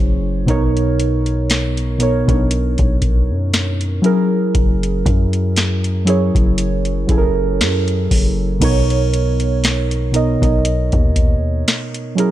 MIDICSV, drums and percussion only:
0, 0, Header, 1, 2, 480
1, 0, Start_track
1, 0, Key_signature, 5, "major"
1, 0, Tempo, 1016949
1, 227, Time_signature, 4, 2, 24, 8
1, 5811, End_track
2, 0, Start_track
2, 0, Title_t, "Drums"
2, 227, Note_on_c, 9, 36, 108
2, 228, Note_on_c, 9, 42, 70
2, 274, Note_off_c, 9, 36, 0
2, 275, Note_off_c, 9, 42, 0
2, 362, Note_on_c, 9, 42, 57
2, 409, Note_off_c, 9, 42, 0
2, 470, Note_on_c, 9, 42, 67
2, 517, Note_off_c, 9, 42, 0
2, 595, Note_on_c, 9, 42, 45
2, 642, Note_off_c, 9, 42, 0
2, 707, Note_on_c, 9, 42, 80
2, 711, Note_on_c, 9, 38, 109
2, 754, Note_off_c, 9, 42, 0
2, 758, Note_off_c, 9, 38, 0
2, 837, Note_on_c, 9, 42, 52
2, 884, Note_off_c, 9, 42, 0
2, 943, Note_on_c, 9, 42, 75
2, 991, Note_off_c, 9, 42, 0
2, 1077, Note_on_c, 9, 36, 90
2, 1079, Note_on_c, 9, 42, 48
2, 1124, Note_off_c, 9, 36, 0
2, 1127, Note_off_c, 9, 42, 0
2, 1184, Note_on_c, 9, 42, 84
2, 1231, Note_off_c, 9, 42, 0
2, 1312, Note_on_c, 9, 42, 41
2, 1317, Note_on_c, 9, 36, 93
2, 1359, Note_off_c, 9, 42, 0
2, 1364, Note_off_c, 9, 36, 0
2, 1424, Note_on_c, 9, 42, 62
2, 1425, Note_on_c, 9, 36, 98
2, 1472, Note_off_c, 9, 36, 0
2, 1472, Note_off_c, 9, 42, 0
2, 1669, Note_on_c, 9, 42, 72
2, 1670, Note_on_c, 9, 38, 120
2, 1716, Note_off_c, 9, 42, 0
2, 1717, Note_off_c, 9, 38, 0
2, 1797, Note_on_c, 9, 42, 50
2, 1844, Note_off_c, 9, 42, 0
2, 1907, Note_on_c, 9, 42, 61
2, 1955, Note_off_c, 9, 42, 0
2, 2146, Note_on_c, 9, 42, 66
2, 2147, Note_on_c, 9, 36, 110
2, 2194, Note_off_c, 9, 36, 0
2, 2194, Note_off_c, 9, 42, 0
2, 2281, Note_on_c, 9, 42, 54
2, 2328, Note_off_c, 9, 42, 0
2, 2386, Note_on_c, 9, 36, 93
2, 2390, Note_on_c, 9, 42, 63
2, 2433, Note_off_c, 9, 36, 0
2, 2437, Note_off_c, 9, 42, 0
2, 2517, Note_on_c, 9, 42, 46
2, 2564, Note_off_c, 9, 42, 0
2, 2626, Note_on_c, 9, 42, 72
2, 2631, Note_on_c, 9, 38, 111
2, 2674, Note_off_c, 9, 42, 0
2, 2678, Note_off_c, 9, 38, 0
2, 2758, Note_on_c, 9, 42, 46
2, 2805, Note_off_c, 9, 42, 0
2, 2866, Note_on_c, 9, 42, 79
2, 2913, Note_off_c, 9, 42, 0
2, 2997, Note_on_c, 9, 36, 94
2, 3001, Note_on_c, 9, 42, 47
2, 3044, Note_off_c, 9, 36, 0
2, 3048, Note_off_c, 9, 42, 0
2, 3105, Note_on_c, 9, 42, 84
2, 3152, Note_off_c, 9, 42, 0
2, 3234, Note_on_c, 9, 42, 41
2, 3281, Note_off_c, 9, 42, 0
2, 3346, Note_on_c, 9, 36, 104
2, 3346, Note_on_c, 9, 42, 63
2, 3393, Note_off_c, 9, 36, 0
2, 3393, Note_off_c, 9, 42, 0
2, 3591, Note_on_c, 9, 42, 71
2, 3592, Note_on_c, 9, 38, 119
2, 3638, Note_off_c, 9, 42, 0
2, 3639, Note_off_c, 9, 38, 0
2, 3718, Note_on_c, 9, 42, 51
2, 3765, Note_off_c, 9, 42, 0
2, 3828, Note_on_c, 9, 36, 85
2, 3829, Note_on_c, 9, 46, 67
2, 3875, Note_off_c, 9, 36, 0
2, 3876, Note_off_c, 9, 46, 0
2, 4066, Note_on_c, 9, 42, 71
2, 4066, Note_on_c, 9, 49, 96
2, 4067, Note_on_c, 9, 36, 115
2, 4114, Note_off_c, 9, 36, 0
2, 4114, Note_off_c, 9, 42, 0
2, 4114, Note_off_c, 9, 49, 0
2, 4202, Note_on_c, 9, 42, 55
2, 4250, Note_off_c, 9, 42, 0
2, 4312, Note_on_c, 9, 42, 67
2, 4359, Note_off_c, 9, 42, 0
2, 4436, Note_on_c, 9, 42, 48
2, 4483, Note_off_c, 9, 42, 0
2, 4549, Note_on_c, 9, 42, 77
2, 4553, Note_on_c, 9, 38, 110
2, 4596, Note_off_c, 9, 42, 0
2, 4600, Note_off_c, 9, 38, 0
2, 4679, Note_on_c, 9, 42, 48
2, 4726, Note_off_c, 9, 42, 0
2, 4786, Note_on_c, 9, 42, 75
2, 4833, Note_off_c, 9, 42, 0
2, 4918, Note_on_c, 9, 36, 93
2, 4922, Note_on_c, 9, 42, 48
2, 4965, Note_off_c, 9, 36, 0
2, 4970, Note_off_c, 9, 42, 0
2, 5027, Note_on_c, 9, 42, 85
2, 5074, Note_off_c, 9, 42, 0
2, 5155, Note_on_c, 9, 42, 41
2, 5158, Note_on_c, 9, 36, 90
2, 5202, Note_off_c, 9, 42, 0
2, 5205, Note_off_c, 9, 36, 0
2, 5266, Note_on_c, 9, 36, 94
2, 5268, Note_on_c, 9, 42, 64
2, 5314, Note_off_c, 9, 36, 0
2, 5315, Note_off_c, 9, 42, 0
2, 5512, Note_on_c, 9, 42, 76
2, 5513, Note_on_c, 9, 38, 120
2, 5559, Note_off_c, 9, 42, 0
2, 5560, Note_off_c, 9, 38, 0
2, 5638, Note_on_c, 9, 42, 50
2, 5685, Note_off_c, 9, 42, 0
2, 5750, Note_on_c, 9, 42, 65
2, 5797, Note_off_c, 9, 42, 0
2, 5811, End_track
0, 0, End_of_file